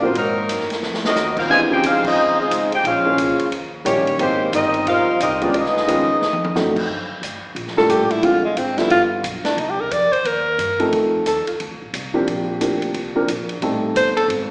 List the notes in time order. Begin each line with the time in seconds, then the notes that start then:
Already playing: A#2
0.02 F#3 G#3 A#3 C4 D4 F4 A#4 C5
0.14 G#2 D#3 F#3 A#3 C4 D#4 A#4, ride
0.48 F#2, hi-hat pedal, ride
0.60 snare
0.70 snare, ride
0.82 F2, snare
0.94 snare
1.04 F#3 C4 D#4 F#4 A#4 D#5, snare
1.16 D#2, snare, hi-hat pedal
1.37 F#3 C4 D#4 F4 A#4 C5 F5, kick, crash
1.50 C#2 C3 E3 F3 G#3 B3 C4 D4 F4 G4 C5 D#5 G#5
1.70 C#3 F3 C4 D#4 G4 G#4 C5 G5
1.83 F2 G#3 C4 D#4 F4 G#4 C5 F5, hi-hat pedal, ride
2.04 G#3 C4 D#4 F4 G#4 D#5, kick, crash
2.17 D#2
2.40 G#3 C4 D#4 F4 G#4 D#5
2.50 C#2, hi-hat pedal, ride
2.72 D#4 G4 G#4 C5 G5, ride
2.84 A#1 G#3 C#4 F4 C5 F5, ride
2.88 C#4 G#4
3.06 F3 A#3 C#4 G#4 C5
3.17 C2, hi-hat pedal, ride
3.38 muted upright bass stroke, ride
3.51 D#2, ride
3.85 A#1 D#3 G3 A#3 C#4 D#4 G4 C#5, hi-hat pedal, ride
4.06 muted upright bass stroke, ride
4.19 G#1 D#3 G3 G#3 A#3 C4 D#4 G4 C5, ride
4.53 G1 G3 C4 D#4 G4 A#4 D#5, hi-hat pedal, ride
4.74 ride
4.86 A#1 G3 C4 D#4 F4 A#4 C5 F5, ride
5.20 C2 G3 C4 D#4 G4 A#4 D#5, hi-hat pedal, ride
5.41 D#3 G3 G#3 B3 C4 C#4 D4 F4 G4 A#4 D5, ride
5.53 C#2 G#3 B3 D#4 F4 G#4 D#5, ride
5.65 snare
5.77 snare
5.87 F2 D#3 G#3 B3 C#4 F4, hi-hat pedal, ride
6.08 muted upright bass stroke
6.21 D2, snare
6.33 high tom
6.44 high tom
6.55 F#2 D3 F#3 A3 C4 D#4, snare, hi-hat pedal
6.76 kick, crash
6.89 G2
7.22 D2, hi-hat pedal, ride
7.42 muted upright bass stroke
7.55 A#1, ride
7.67 snare
7.77 D3 G3 A3 A#3 F4 A4, snare
7.89 A1 G4, hi-hat pedal, ride
8.10 E4, ride
8.22 F1 D3 F3 G#3 C4 F4, ride
8.45 G#3
8.55 G#1 C4, hi-hat pedal, ride
8.77 D3 F3 G3 B3 E4 F4, snare, ride
8.90 G1 F4, ride
9.23 B1, hi-hat pedal, ride
9.44 D4, snare, ride
9.57 C2 D#4, ride
9.70 G4
9.80 A#4
9.91 F2 D5, hi-hat pedal, ride
10.12 C5, muted upright bass stroke, ride
10.25 D#2 A#4, ride
10.58 G2, hi-hat pedal, ride
10.80 F3 A3 C4 D#4 A4, muted upright bass stroke, ride
10.92 F2, ride
11.26 D#2 A4, hi-hat pedal, ride
11.47 F4, muted upright bass stroke, ride
11.60 D2, ride
11.71 C2
11.82 A1
11.93 C2, hi-hat pedal, ride
12.14 F3 A#3 C4 D4 G4
12.27 A#1, ride
12.61 D2 F3 A#3 C4 D4 G4, hi-hat pedal, ride
12.82 ride
12.94 C2, ride
13.16 F3 A#3 C4 D4 A#4
13.28 A#1, hi-hat pedal, ride
13.49 ride
13.62 A1 G3 A3 C4 D#4 A4, ride
13.95 G1 C5, hi-hat pedal, ride
14.16 A4, ride
14.28 G#1, ride